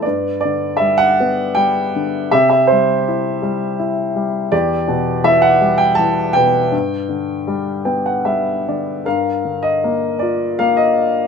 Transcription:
upright piano
0.02 G2 B4 D5
0.41 D3 D5
0.77 E5
0.81 G3
0.98 F#5
1.20 B3
1.55 G3 G5
1.95 D3
2.31 C3 G4 E5
2.50 E5
2.67 C5
2.72 G3
3.08 E4
3.42 G3
3.79 E4
4.16 G3
4.52 E2 G4 D5
4.88 B2
5.24 E3 E5
5.42 F#5
5.61 G3
5.78 G5
5.95 E3 A5
6.33 B2 B4 G5
6.72 G2
7.09 D3
7.47 G3
7.85 B3 G5
8.06 F#5
8.25 G3 E5
8.68 D3 D5
9.05 G2 A#4 F5
9.44 D3
9.63 D#5
9.84 A#3
10.19 F4 D5
10.59 A#3 F5
10.77 D#5

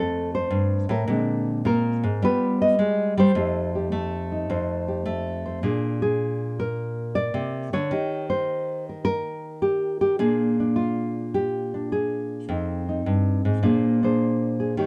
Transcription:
nylon-string guitar
Already playing: F2 A3 C4 A4
0.35 C5
0.50 G2
0.89 A2 A#4
1.07 A#2 D3 G#3 C4
1.65 A#2 A#4
2.03 G#2
2.22 G3 B3 F4 G4 B4
2.62 D#5
2.79 G#3
3.17 G3 C5
3.35 F2 A3 D#4 G4
3.75 G4
3.92 A3
4.32 D#4
4.50 F2 C5
4.88 G4
5.06 A3
5.46 C5
5.63 A#2 A#3 D4 G#4
6.02 G#4
6.60 A#4
7.15 D5
7.34 C3
7.73 D3 C#5
7.91 D#3 D#4 G4
8.30 C5
8.89 A#4
9.05 A#4
9.62 G4
10.01 G4
10.19 A#2 A#3 D4 G#4
10.60 D4
10.76 F4
11.34 G4
11.74 D4
11.92 G#4
12.49 F2 C4 D#4
12.89 D#4
13.06 G2
13.45 G#2
13.63 A#2 A#3 D4 G#4 C5
14.03 D4 G#4 C5
14.60 G#4
14.77 D#3 D#4 G4 C#5

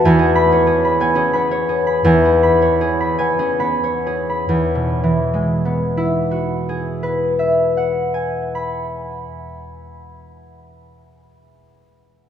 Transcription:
harp
Already playing: G#3 B4
0.05 E2 G#5
0.19 G#4
0.35 B5
0.52 C#5
0.67 G#4
0.84 B5
1.00 B3 G#5
1.15 C#4 G#4
1.33 B3 B5
1.51 C#5
1.69 G#4
1.87 B5
2.04 E2 G#5
2.25 G#4
2.43 B5
2.62 C#5
2.81 G#4
3.00 B5
3.18 B3 G#5
3.39 C#4 G#4
3.59 B3 B5
3.84 C#5
4.07 G#4
4.30 B5
4.49 E2
4.75 B2
5.04 E3
5.34 G#3
5.65 B3
5.97 E4
6.31 F#4
6.69 G#4
7.03 B4
7.39 E5
7.77 F#5
8.14 G#5
8.55 B5

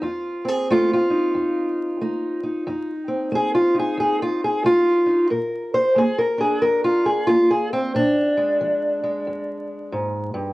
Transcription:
steel-string acoustic guitar
Already playing: C4
0.02 F2 F4
0.45 C4 G#4
0.70 A3 F4
0.93 F4
1.10 D#4
1.35 F2
2.01 A3 D#4
2.43 D#4
2.67 F2 D#4
3.08 C4
3.32 A3 G#4
3.55 F4
3.75 D#4
3.79 G#4
3.97 F2 G#4
4.22 F4
4.44 G#4
4.64 A3 F4
5.06 D#4
5.30 A#2 A#4
5.74 C5
5.96 A#3 G#4
6.18 A#4
6.38 D4 G#4
6.62 F2 A#4
6.84 F4
7.06 G#4
7.27 A#3 F4
7.50 G#4
7.73 C4
7.95 A#2 D4
8.37 G#3
8.61 F3
9.04 G#3
9.27 F2
9.92 G#2
10.34 G2

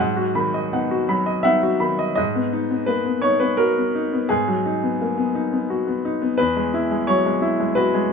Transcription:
grand piano
Already playing: G#2 F#3 F#5
0.17 F#4
0.35 D#3 B5
0.54 D#5
0.73 B3 D#4 F#5
0.91 F#4
1.09 F#3 B5
1.26 D#5
1.43 B3 D#4 E5 F#5
1.63 F#4
1.80 D#3 B5
1.99 D#5
2.15 G#2 D#5
2.35 B3
2.53 D#4
2.71 B3
2.86 A#3 B4
3.06 B3
3.22 D#4 C#5
3.40 B3 B4
3.57 F#4 A#4
3.78 B3
3.95 D#4
4.13 B3
4.29 G#2 G#4
4.48 F#3
4.66 D#4
4.83 B3
5.01 A#3
5.18 B3
5.35 D#4
5.53 B3
5.70 F#4
5.87 B3
6.05 D#4
6.22 B3
6.38 E2 B4
6.56 G#3
6.74 E4
6.91 G#3
7.07 F#3 C#5
7.26 G#3
7.42 E4
7.60 G#3
7.75 F#4 B4
7.94 G#3

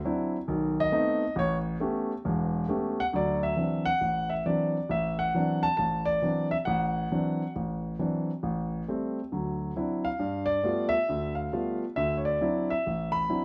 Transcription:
grand piano
0.04 F#3 C4 D4 E4
0.48 B1 D#3
0.80 D#5
0.92 A3 B3 C4 D#4
1.36 A1 C#5
1.80 A3 B3 C#4 G4
2.25 E1 E2
2.69 A3 B3 C#4 G4
3.00 F#5
3.13 D2 F#3 D5
3.43 E5
3.57 E3 F#3 C4 D4
3.85 F#5
4.01 A1
4.30 E5
4.46 E3 F#3 C4 D4 D5
4.89 A1 E5
5.19 F#5
5.34 E3 F#3 C4 D4
5.63 A5
5.77 A1 A5
6.05 D5
6.22 E3 F#3 C4 D4
6.51 E5
6.65 A1 F#5
7.12 E3 F#3 C4 D4
7.56 A1
7.99 E3 F#3 C4 D4
8.43 A1
8.88 G3 A3 C4
9.32 D2 F#3
9.76 F#3 C4 D4 E4
10.05 F5
10.19 G2
10.46 D5
10.63 G3 A3 B3 F4
10.89 E5
11.09 D2
11.35 F5
11.52 G3 A3 B3 F4
11.96 D2 E5
12.17 C#5
12.25 D5
12.41 F#3 C4 D4 E4
12.70 E5
12.87 A1
13.12 B5
13.29 F#3 C4 D4 E4

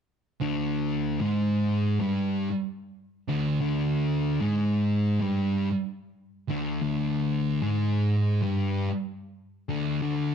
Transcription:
distorted electric guitar
0.41 D2 D3
1.21 G#2 G#3
2.01 G2 G3
3.28 D2 D3
3.60 D2 D3
4.41 G#2 G#3
5.22 G2 G3
6.50 D2 D3
6.82 D2 D3
7.62 G#2 G#3
8.43 G2 G3
9.69 D2 D3
10.02 D2 D3

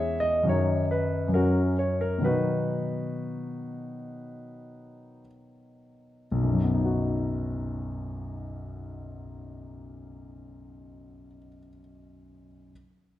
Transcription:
grand piano
Already playing: E2 E3 G#3 C#4 G#4 C#5 E5
0.20 D#5
0.43 F#2 D#3 F#3 D#4
0.49 C#5
0.91 B4
1.28 F#2 F#3
1.34 C#4 F#4 A#4
1.79 C#5
2.01 A#4
2.18 B2 D#3 F#3
2.22 B3 D#4 F#4 B4
6.31 B1
6.42 F#2
6.53 F#3
6.64 B3
6.74 D#4
6.85 F#4

